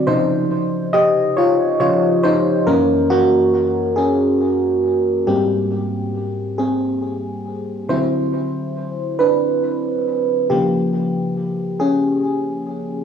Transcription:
<<
  \new Staff \with { instrumentName = "FM electric piano" } { \time 6/8 \key aes \major \tempo 4. = 46 <ees' c''>4 <g' ees''>8 <f' des''>8 <f' des''>8 <ees' c''>8 | <des' bes'>8 <bes ges'>4 <des' aes'>4 r8 | <bes g'>4. <c' aes'>4. | <e' c''>4. <d' b'>4 r8 |
<bes g'>4. <des' aes'>4. | }
  \new Staff \with { instrumentName = "FM electric piano" } { \clef bass \time 6/8 \key aes \major <c des f>2 <des f c''>8 r8 | <ges, fes bes>2. | <aes, g c'>8 r2 r8 | <d fis c'>4. r4. |
<des f bes>2. | }
>>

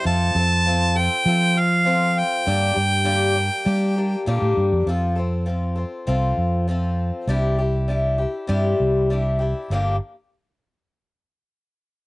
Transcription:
<<
  \new Staff \with { instrumentName = "Harmonica" } { \time 4/4 \key g \dorian \tempo 4 = 99 a''4. g''4 f''4 g''8~ | g''2. r4 | r1 | r1 |
r1 | }
  \new Staff \with { instrumentName = "Steel-string acoustic guitar" } { \time 4/4 \key g \dorian <f c' f' a'>8 <c' f' a'>8 <f c' f' a'>8 <c' f' a'>8 <f c' f' a'>8 <c' f' a'>8 <f c' f' a'>4 | <g, d g bes d' g'>8 <g bes d' g'>8 <g, d g bes d' g'>8 <g bes d' g'>8 <g bes d' g'>8 <g bes d' g'>8 <g, d g bes d' g'>4 | <f c' f' a'>8 <c' f' a'>8 <f c' f' a'>8 <c' f' a'>8 <f c' f' a'>4 <f c' f' a'>4 | <c g d' e' g'>8 <d' e' g'>8 <g d' e' g'>8 <d' e' g'>8 <c g d' e' g'>4 <g d' e' g'>8 <d' e' g'>8 |
<g, d f bes d' g'>8 r2. r8 | }
  \new Staff \with { instrumentName = "Fingered electric bass" } { \clef bass \time 4/4 \key g \dorian f,8 f,4. f2 | g,8 g,4. g4 bes,16 a,16 g,16 f,16 | f,2 c,8 f,4. | c,2 g,8 c,4. |
g,,8 r2. r8 | }
>>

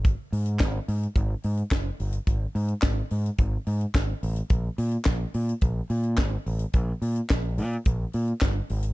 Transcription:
<<
  \new Staff \with { instrumentName = "Fingered electric bass" } { \clef bass \time 4/4 \key aes \lydian \tempo 4 = 107 aes,,8 aes,8 aes,,8 aes,8 aes,,8 aes,8 ges,,8 g,,8 | aes,,8 aes,8 aes,,8 aes,8 aes,,8 aes,8 aes,,8 a,,8 | bes,,8 bes,8 bes,,8 bes,8 bes,,8 bes,8 aes,,8 a,,8 | bes,,8 bes,8 bes,,8 bes,8 bes,,8 bes,8 g,,8 aes,,8 | }
  \new DrumStaff \with { instrumentName = "Drums" } \drummode { \time 4/4 <hh bd>8 hho16 hh16 <hc hh bd sn>8 hho16 hh16 <hh bd>8 hho16 hh16 <hc hh bd sn>8 hho16 hh16 | <hh bd>8 hho16 hh16 <hc hh bd sn>8 hho16 hh16 <hh bd>8 hho16 hh16 <hc hh bd sn>8 hho16 hh16 | <hh bd>8 hho16 hh16 <hc hh bd sn>8 hho16 hh16 <hh bd>8 hho16 hh16 <hc hh bd sn>8 hho16 hh16 | <hh bd>8 hho16 hh16 <hc hh bd sn>8 hho16 hh16 <hh bd>8 hho16 hh16 <hc hh bd sn>8 hho16 hh16 | }
>>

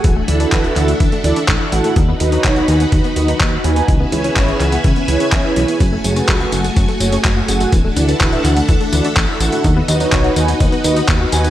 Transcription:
<<
  \new Staff \with { instrumentName = "String machine" } { \time 4/4 \key d \lydian \tempo 4 = 125 <d' a' e'' fis''>1 | <dis' fis' b'>1 | <cis' b' e'' gis''>1 | <a fis'>1 |
<d' a' e'' fis''>1 | <dis' fis' b'>1 | }
  \new Staff \with { instrumentName = "Analog polysynth" } { \time 4/4 \key d \lydian r8 <e' fis' a' d''>16 <e' fis' a' b'>8. <e' fis' a' fis''>16 r8. <e' fis' a' d''>16 r8. <e' fis' a' fis''>8 | r8 <dis' fis' b' dis''>16 <dis' fis' b' cis''>8. <dis' fis' b' gis''>16 r8. <dis' fis' b' dis''>16 r8. <dis' fis' b' gis''>8 | r8 <e' gis' b' cis''>16 <e' gis' b' cis''>8. <e' gis' b' fis''>16 r8. <e' gis' b' cis''>4 <e' gis' cis''>8 | r8 <fis' gis' a' cis''>16 <fis' gis' a' b'>8. <fis' gis' a' fis''>16 r8. <fis' gis' a' cis''>16 r8. <fis' gis' a' fis''>8 |
r8 <e' fis' a' d''>16 <e' fis' a' b'>8. <e' fis' a' fis''>16 r8. <e' fis' a' d''>16 r8. <e' fis' a' fis''>8 | r8 <dis' fis' b' dis''>16 <dis' fis' b' cis''>8. <dis' fis' b' gis''>16 r8. <dis' fis' b' dis''>16 r8. <dis' fis' b' gis''>8 | }
  \new Staff \with { instrumentName = "Synth arpeggio sound" } { \clef bass \time 4/4 \key d \lydian e16 a16 e16 d'16 e16 e'16 e16 a16 e16 a16 e16 d'16 e16 e'16 e16 a16 | dis16 b16 dis16 dis'16 dis16 fis'16 dis16 b16 dis16 b16 dis16 dis'16 dis16 fis'16 dis16 b16 | e16 b16 e16 cis'16 e16 e'16 e16 b16 e16 b16 e16 cis'16 e16 e'16 e16 b16 | fis16 a16 fis16 cis'16 fis16 fis'16 fis16 a16 fis16 a16 fis16 cis'16 fis16 fis'16 fis16 a16 |
e16 a16 e16 d'16 e16 e'16 e16 a16 e16 a16 e16 d'16 e16 e'16 e16 a16 | dis16 b16 dis16 dis'16 dis16 fis'16 dis16 b16 dis16 b16 dis16 dis'16 dis16 fis'16 dis16 b16 | }
  \new Staff \with { instrumentName = "Analog synth bass" } { \clef bass \time 4/4 \key d \lydian d,,8 d,8 d,,8 d,8 d,8 d,8 a,,8 a,,8 | dis,8 dis,8 b,,8 dis,8 dis,8 dis,8 dis,8 dis,8 | cis,8 cis,8 gis,,8 cis,8 cis,8 cis,8 b,,8 b,,8 | fis,,8 fis,,8 cis,8 fis,,8 fis,,8 fis,,8 fis,,8 fis,,8 |
d,,8 d,8 d,,8 d,8 d,8 d,8 a,,8 a,,8 | dis,8 dis,8 b,,8 dis,8 dis,8 dis,8 dis,8 dis,8 | }
  \new DrumStaff \with { instrumentName = "Drums" } \drummode { \time 4/4 <hh bd>8 hh16 hh16 <hc hh bd>16 hh16 <hc hh>16 hh16 <hh bd>16 hh16 hh16 hh16 <hc hh bd>8 hh16 hh16 | <hh bd>8 hh16 hh16 <hc hh bd>16 hh16 hh16 hh16 <hh bd>16 hh16 hh16 hh16 <hc hh bd>8 hh16 hh16 | <hh bd>8 hh16 hh16 <hc hh bd>16 hh16 <hc hh>16 hh16 <hh bd>16 hh16 hh16 hh16 <hc hh bd>8 hh16 hh16 | <hh bd tamb>8 <hh tamb>16 <hh tamb>16 <hc hh bd tamb>16 hh16 <hh tamb>16 <hh tamb>16 <hh bd tamb>16 hh16 <hh tamb>16 <hh tamb>16 <hc hh bd tamb>8 <hh tamb>16 <hh tamb>16 |
<hh bd tamb>8 <hh tamb>16 <hh tamb>16 <hc hh bd tamb>16 hh16 <hc hh tamb>16 <hh tamb>16 <hh bd tamb>16 hh16 <hh tamb>16 <hh tamb>16 <hc hh bd tamb>8 <hh tamb>16 <hh tamb>16 | <hh bd tamb>8 <hh tamb>16 <hh tamb>16 <hc hh bd tamb>16 hh16 <hh tamb>16 <hh tamb>16 <hh bd tamb>16 hh16 <hh tamb>16 <hh tamb>16 <hc hh bd tamb>8 <hh tamb>16 <hh tamb>16 | }
>>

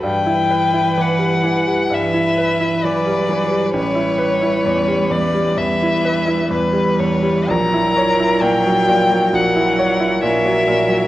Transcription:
<<
  \new Staff \with { instrumentName = "Violin" } { \time 4/4 \key e \dorian \tempo 4 = 65 g''4 fis''4 e''4 d''4 | cis''4. d''8 e''4 b'8 cis''8 | ais''4 g''4 fis''4 e''4 | }
  \new Staff \with { instrumentName = "Violin" } { \time 4/4 \key e \dorian b'2 b'2 | b'2 b'4 b'4 | ais'2 ais'4 ais'4 | }
  \new Staff \with { instrumentName = "Grand piano" } { \clef bass \time 4/4 \key e \dorian g,16 e'16 b'16 e'16 e16 g16 e16 g16 g,16 e'16 b'16 e'16 e16 g16 e16 g16 | a,,16 e'16 b'16 e'16 e,16 g16 e,16 g16 e,16 e'16 b'16 e'16 e,16 g16 e,16 g16 | ais,,16 e'16 cis''16 e'16 ais,16 fis16 ais,16 fis16 ais,,16 e'16 cis''16 e'16 ais,16 fis16 ais,16 fis16 | }
  \new Staff \with { instrumentName = "Cello" } { \clef bass \time 4/4 \key e \dorian e2 e4 fis4 | g2 g4 g4 | fis2 fis4 fis4 | }
>>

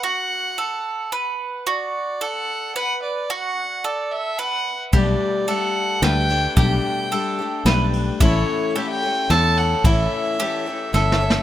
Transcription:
<<
  \new Staff \with { instrumentName = "Fiddle" } { \time 3/4 \key fis \phrygian \tempo 4 = 110 fis''2 r4 | d''4 fis''4 fis''8 d''8 | fis''4 d''8 e''8 fis''8. r16 | d''4 fis''4 g''4 |
g''2 r4 | cis''4 e''16 g''8. a''8 fis''8 | e''2 e''4 | }
  \new Staff \with { instrumentName = "Mandolin" } { \time 3/4 \key fis \phrygian fis'4 a'4 b'4 | fis'4 a'4 b'4 | fis'4 a'4 b'4 | g'4 a'4 b'4 |
g'4 a'4 b'4 | e'4 g'4 a'4 | e'4 g'4 a'4 | }
  \new Staff \with { instrumentName = "Twelve-string acoustic guitar" } { \time 3/4 \key fis \phrygian r2. | r2. | r2. | <b, g a d' g'>4 <g a d' g'>4 <g a d' g'>8 <a d' g'>8 |
<b, g a d' g'>4 <g a d' g'>8 <a d' g'>8 <g a d' g'>4 | <a, e a cis' a'>4 <e a cis' a'>8 <a cis' a'>8 <e a cis' a'>4 | <a, e a cis' a'>4 <e a cis' a'>8 <a cis' a'>8 <e a cis' a'>8 <a cis' a'>8 | }
  \new Staff \with { instrumentName = "Fingered electric bass" } { \clef bass \time 3/4 \key fis \phrygian r2. | r2. | r2. | b,,8 r4. d,4 |
b,,8 r4. b,,4 | a,,8 r4. e,4 | a,,8 r4. g,,4 | }
  \new DrumStaff \with { instrumentName = "Drums" } \drummode { \time 3/4 r4 r4 r4 | r4 r4 r4 | r4 r4 r4 | <bd cymr>4 cymr4 <cymr sn>8 cymr8 |
<bd cymr>4 cymr4 <cymr sn>8 cymr8 | <bd cymr>4 cymr4 <cymr sn>8 cymr8 | <bd cymr>4 cymr4 \tuplet 3/2 { sn8 sn8 sn8 } | }
>>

